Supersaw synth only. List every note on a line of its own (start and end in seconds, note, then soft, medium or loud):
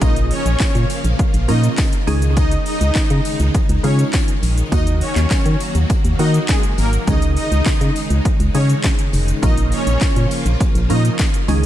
0.02 0.23 D#4 medium
0.02 0.23 D#5 loud
0.31 0.87 C#4 medium
0.31 0.86 C#5 medium
1.49 1.60 D#4 medium
1.49 1.59 D#5 medium
2.37 2.59 D#4 medium
2.37 2.58 D#5 loud
2.66 3.22 D#4 medium
2.66 3.22 D#5 medium
3.84 3.95 C#4 medium
3.84 3.95 C#5 medium
4.72 4.94 D#4 medium
4.72 4.93 D#5 loud
5.01 5.57 C#4 medium
5.01 5.57 C#5 medium
6.19 6.30 D#4 medium
6.19 6.30 D#5 medium
6.49 6.60 G#3 medium
6.49 6.59 G#4 medium
6.78 6.89 A#3 medium
6.78 6.89 A#4 medium
7.08 7.30 D#4 medium
7.08 7.29 D#5 loud
7.37 7.93 D#4 medium
7.37 7.92 D#5 medium
8.55 8.66 C#4 medium
8.55 8.65 C#5 medium
9.43 9.65 D#4 medium
9.43 9.64 D#5 loud
9.72 10.28 C#4 medium
9.72 10.28 C#5 medium
10.90 11.01 D#4 medium
10.90 11.01 D#5 medium